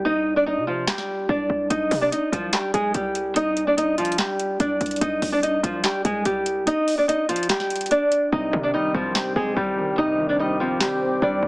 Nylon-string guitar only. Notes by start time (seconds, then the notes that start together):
0.05 D#4 D#5
0.36 D4 D5
0.46 D#4 D#5
0.67 F3 F4
0.88 G3 G4
1.29 D4 D5
1.70 D#4 D#5
2.01 D4 D5
2.12 D#4 D#5
2.33 F3 F4
2.53 G3 G4
2.74 G#3 G#4
2.95 G3 G4
3.36 D#4 D#5
3.67 D4 D5
3.77 D#4 D#5
3.98 F3 F4
4.18 G3 G4
4.60 D4 D5
5.01 D#4 D#5
5.32 D4 D5
5.43 D#4 D#5
5.63 F3 F4
5.84 G3 G4
6.05 G#3 G#4
6.25 G3 G4
6.67 D#4 D#5
6.98 D4 D5
7.08 D#4 D#5
7.29 F3 F4
7.49 G3 G4
7.91 D4 D5
8.32 D#4 D#5
8.63 D4 D5
8.74 D#4 D#5
8.95 F3 F4
9.15 G3 G4
9.36 G#3 G#4
9.57 G3 G4
9.98 D#4 D#5
10.29 D4 D5
10.39 D#4 D#5
10.60 F3 F4
10.81 G3 G4
11.22 D4 D5